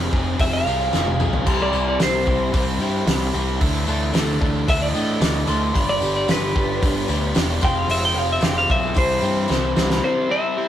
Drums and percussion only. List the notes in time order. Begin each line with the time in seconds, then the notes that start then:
0.00 tambourine
0.13 kick, tambourine
0.39 kick, open hi-hat, tambourine
0.54 tambourine
0.67 tambourine
0.81 tambourine
0.93 snare, tambourine
1.07 high tom, tambourine
1.20 mid tom, tambourine
1.33 floor tom, tambourine
1.47 kick, crash
1.60 tambourine
1.73 tambourine
2.00 snare, open hi-hat, tambourine
2.14 tambourine
2.26 kick, tambourine
2.54 kick, open hi-hat, tambourine
2.68 tambourine
2.80 tambourine
2.94 tambourine
3.08 snare, open hi-hat, tambourine
3.21 tambourine
3.34 tambourine
3.47 tambourine
3.61 kick, open hi-hat
3.73 tambourine
3.87 tambourine
4.14 snare, open hi-hat, tambourine
4.27 tambourine
4.42 kick, tambourine
4.68 kick, open hi-hat, tambourine
4.95 tambourine
5.09 tambourine
5.21 snare, open hi-hat, tambourine
5.35 tambourine
5.47 tambourine
5.62 tambourine
5.76 kick, open hi-hat
6.02 tambourine
6.28 snare, open hi-hat, tambourine
6.43 tambourine
6.55 kick, tambourine
6.83 kick, open hi-hat, tambourine
7.08 tambourine
7.21 tambourine
7.35 snare, open hi-hat, tambourine
7.48 tambourine
7.61 kick, tambourine
7.75 tambourine
7.88 open hi-hat, tambourine
8.28 tambourine
8.41 snare, open hi-hat, tambourine
8.55 tambourine
8.68 kick, tambourine
8.82 tambourine
8.94 kick, open hi-hat, tambourine
9.08 tambourine
9.21 tambourine
9.36 tambourine
9.48 snare, tambourine
9.62 tambourine
9.76 snare, tambourine
9.90 snare